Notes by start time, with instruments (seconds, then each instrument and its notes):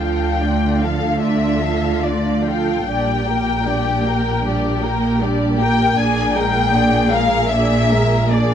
Already playing: double bass section D2, cello section D3
0.00 viola section F3 F4, violin section A4 F5 G5
0.41 viola section A3 D4, violin section F4 D5
0.82 viola section F3 F4, violin section A4 F5
1.21 viola section A3 D4, violin section F4 D5 E5
1.61 viola section F3 F4, violin section A4 F5
2.03 viola section A3 D4, violin section F4 D5
2.47 viola section F3 F4, violin section A4 F5 G5
2.88 double bass section A#1, cello section A#2, viola section G3 D4, violin section G4 D5
3.28 viola section A#3 G4, violin section A#4 G5
3.66 viola section G3 D4, violin section G4 D5
4.03 viola section A#3 G4, violin section A#4 G5
4.44 viola section G3 D4, violin section G4 D5
4.83 viola section A#3 G4, violin section A#4 G5
5.22 viola section G3 D4, violin section G4 D5
5.59 viola section A#3 G4, violin section A#4 G5
5.97 double bass section A#1, cello section A#2, viola section A#3 D4, violin section G#4 D5 G#5
6.35 viola section G#3 A#3, violin section G#4 A#4 G5
6.73 viola section A#3 D4, violin section G#4 D5
7.10 viola section G#3 A#3, violin section G#4 A#4 F5
7.49 viola section A#3 D4, violin section G#4 D5 E5
7.90 viola section G#3 A#3, violin section G#4 A#4
8.30 viola section A#3 D4, violin section G#4 D5